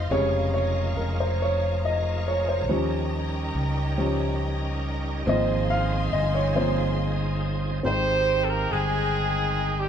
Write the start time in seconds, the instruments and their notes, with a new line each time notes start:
Already playing: upright piano D#5 F5, string section D#5 F5
0.10 fingered electric bass F1, upright piano C3 C#3 G#3 C#5, tonewheel organ G#3 F4 A#4 C#5, string section A#5
0.54 upright piano C#5
0.97 fingered electric bass F1, upright piano A#4
1.20 upright piano C5
1.42 upright piano C#5
1.85 upright piano D#5
2.28 upright piano C#5
2.49 upright piano C5
2.67 fingered electric bass D#2, upright piano F3 G3 C#4, tonewheel organ F#3 C#4 D#4 A#4, string section D#5 G5
2.75 tonewheel organ G3
3.55 fingered electric bass C#2
3.98 upright piano F3 G3 C#4
5.25 fingered electric bass G#1, tonewheel organ F3 C4 D#4 G#4, upright piano F3 A#3 C4 D#5, string section F5 G#5 C6
5.70 upright piano F5
6.13 fingered electric bass G1, upright piano D#5
6.35 upright piano C#5
6.55 upright piano F3 A#3 C4 C5
7.83 fingered electric bass G#1, tonewheel organ D#3 C4 F4, upright piano G#3 C4 D#4 G5, trumpet C5
7.87 horn section D#4 G4 C5 G5, upright piano C5
7.92 tonewheel organ G5
8.45 trumpet A4
8.50 horn section A#3 A#4, trumpet A#4
8.71 fingered electric bass G1, horn section G#3 C4 D#4 G#4, trumpet G#4
9.78 horn section G3 G4, trumpet G4